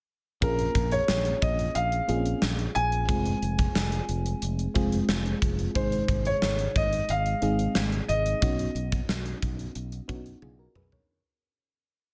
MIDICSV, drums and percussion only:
0, 0, Header, 1, 2, 480
1, 0, Start_track
1, 0, Key_signature, -5, "minor"
1, 0, Tempo, 666667
1, 302, Time_signature, 4, 2, 24, 8
1, 8737, End_track
2, 0, Start_track
2, 0, Title_t, "Drums"
2, 302, Note_on_c, 9, 36, 101
2, 302, Note_on_c, 9, 42, 86
2, 374, Note_off_c, 9, 36, 0
2, 374, Note_off_c, 9, 42, 0
2, 423, Note_on_c, 9, 42, 54
2, 495, Note_off_c, 9, 42, 0
2, 540, Note_on_c, 9, 36, 79
2, 543, Note_on_c, 9, 42, 62
2, 612, Note_off_c, 9, 36, 0
2, 615, Note_off_c, 9, 42, 0
2, 659, Note_on_c, 9, 42, 47
2, 731, Note_off_c, 9, 42, 0
2, 780, Note_on_c, 9, 38, 108
2, 852, Note_off_c, 9, 38, 0
2, 900, Note_on_c, 9, 42, 50
2, 972, Note_off_c, 9, 42, 0
2, 1023, Note_on_c, 9, 42, 66
2, 1024, Note_on_c, 9, 36, 90
2, 1095, Note_off_c, 9, 42, 0
2, 1096, Note_off_c, 9, 36, 0
2, 1144, Note_on_c, 9, 42, 50
2, 1216, Note_off_c, 9, 42, 0
2, 1262, Note_on_c, 9, 42, 82
2, 1334, Note_off_c, 9, 42, 0
2, 1383, Note_on_c, 9, 42, 45
2, 1455, Note_off_c, 9, 42, 0
2, 1502, Note_on_c, 9, 42, 65
2, 1574, Note_off_c, 9, 42, 0
2, 1624, Note_on_c, 9, 42, 50
2, 1696, Note_off_c, 9, 42, 0
2, 1742, Note_on_c, 9, 38, 103
2, 1814, Note_off_c, 9, 38, 0
2, 1864, Note_on_c, 9, 42, 46
2, 1936, Note_off_c, 9, 42, 0
2, 1984, Note_on_c, 9, 42, 64
2, 2056, Note_off_c, 9, 42, 0
2, 2103, Note_on_c, 9, 42, 43
2, 2175, Note_off_c, 9, 42, 0
2, 2222, Note_on_c, 9, 42, 83
2, 2223, Note_on_c, 9, 36, 103
2, 2294, Note_off_c, 9, 42, 0
2, 2295, Note_off_c, 9, 36, 0
2, 2343, Note_on_c, 9, 42, 57
2, 2415, Note_off_c, 9, 42, 0
2, 2466, Note_on_c, 9, 42, 61
2, 2538, Note_off_c, 9, 42, 0
2, 2581, Note_on_c, 9, 42, 50
2, 2584, Note_on_c, 9, 36, 86
2, 2653, Note_off_c, 9, 42, 0
2, 2656, Note_off_c, 9, 36, 0
2, 2703, Note_on_c, 9, 38, 103
2, 2775, Note_off_c, 9, 38, 0
2, 2823, Note_on_c, 9, 42, 46
2, 2895, Note_off_c, 9, 42, 0
2, 2943, Note_on_c, 9, 42, 65
2, 3015, Note_off_c, 9, 42, 0
2, 3065, Note_on_c, 9, 42, 50
2, 3137, Note_off_c, 9, 42, 0
2, 3183, Note_on_c, 9, 42, 81
2, 3255, Note_off_c, 9, 42, 0
2, 3304, Note_on_c, 9, 42, 44
2, 3376, Note_off_c, 9, 42, 0
2, 3422, Note_on_c, 9, 42, 63
2, 3424, Note_on_c, 9, 36, 87
2, 3494, Note_off_c, 9, 42, 0
2, 3496, Note_off_c, 9, 36, 0
2, 3545, Note_on_c, 9, 42, 48
2, 3617, Note_off_c, 9, 42, 0
2, 3663, Note_on_c, 9, 38, 105
2, 3735, Note_off_c, 9, 38, 0
2, 3786, Note_on_c, 9, 42, 42
2, 3858, Note_off_c, 9, 42, 0
2, 3903, Note_on_c, 9, 36, 86
2, 3904, Note_on_c, 9, 42, 68
2, 3975, Note_off_c, 9, 36, 0
2, 3976, Note_off_c, 9, 42, 0
2, 4023, Note_on_c, 9, 42, 46
2, 4095, Note_off_c, 9, 42, 0
2, 4143, Note_on_c, 9, 36, 104
2, 4143, Note_on_c, 9, 42, 84
2, 4215, Note_off_c, 9, 36, 0
2, 4215, Note_off_c, 9, 42, 0
2, 4264, Note_on_c, 9, 42, 58
2, 4336, Note_off_c, 9, 42, 0
2, 4381, Note_on_c, 9, 36, 82
2, 4384, Note_on_c, 9, 42, 62
2, 4453, Note_off_c, 9, 36, 0
2, 4456, Note_off_c, 9, 42, 0
2, 4502, Note_on_c, 9, 42, 48
2, 4574, Note_off_c, 9, 42, 0
2, 4623, Note_on_c, 9, 38, 103
2, 4695, Note_off_c, 9, 38, 0
2, 4743, Note_on_c, 9, 42, 50
2, 4815, Note_off_c, 9, 42, 0
2, 4865, Note_on_c, 9, 36, 90
2, 4866, Note_on_c, 9, 42, 64
2, 4937, Note_off_c, 9, 36, 0
2, 4938, Note_off_c, 9, 42, 0
2, 4987, Note_on_c, 9, 42, 48
2, 5059, Note_off_c, 9, 42, 0
2, 5103, Note_on_c, 9, 42, 82
2, 5175, Note_off_c, 9, 42, 0
2, 5225, Note_on_c, 9, 42, 45
2, 5297, Note_off_c, 9, 42, 0
2, 5342, Note_on_c, 9, 42, 62
2, 5414, Note_off_c, 9, 42, 0
2, 5464, Note_on_c, 9, 42, 49
2, 5536, Note_off_c, 9, 42, 0
2, 5581, Note_on_c, 9, 38, 104
2, 5653, Note_off_c, 9, 38, 0
2, 5704, Note_on_c, 9, 42, 44
2, 5776, Note_off_c, 9, 42, 0
2, 5825, Note_on_c, 9, 42, 66
2, 5897, Note_off_c, 9, 42, 0
2, 5946, Note_on_c, 9, 42, 46
2, 6018, Note_off_c, 9, 42, 0
2, 6063, Note_on_c, 9, 36, 99
2, 6063, Note_on_c, 9, 42, 87
2, 6135, Note_off_c, 9, 36, 0
2, 6135, Note_off_c, 9, 42, 0
2, 6186, Note_on_c, 9, 42, 55
2, 6258, Note_off_c, 9, 42, 0
2, 6305, Note_on_c, 9, 42, 63
2, 6377, Note_off_c, 9, 42, 0
2, 6423, Note_on_c, 9, 42, 47
2, 6424, Note_on_c, 9, 36, 84
2, 6495, Note_off_c, 9, 42, 0
2, 6496, Note_off_c, 9, 36, 0
2, 6545, Note_on_c, 9, 38, 103
2, 6617, Note_off_c, 9, 38, 0
2, 6665, Note_on_c, 9, 42, 50
2, 6737, Note_off_c, 9, 42, 0
2, 6786, Note_on_c, 9, 36, 87
2, 6787, Note_on_c, 9, 42, 65
2, 6858, Note_off_c, 9, 36, 0
2, 6859, Note_off_c, 9, 42, 0
2, 6906, Note_on_c, 9, 42, 51
2, 6978, Note_off_c, 9, 42, 0
2, 7022, Note_on_c, 9, 42, 81
2, 7094, Note_off_c, 9, 42, 0
2, 7144, Note_on_c, 9, 42, 46
2, 7216, Note_off_c, 9, 42, 0
2, 7264, Note_on_c, 9, 42, 65
2, 7265, Note_on_c, 9, 36, 82
2, 7336, Note_off_c, 9, 42, 0
2, 7337, Note_off_c, 9, 36, 0
2, 7386, Note_on_c, 9, 42, 50
2, 7458, Note_off_c, 9, 42, 0
2, 7504, Note_on_c, 9, 48, 54
2, 7576, Note_off_c, 9, 48, 0
2, 7743, Note_on_c, 9, 45, 79
2, 7815, Note_off_c, 9, 45, 0
2, 7864, Note_on_c, 9, 43, 79
2, 7936, Note_off_c, 9, 43, 0
2, 8737, End_track
0, 0, End_of_file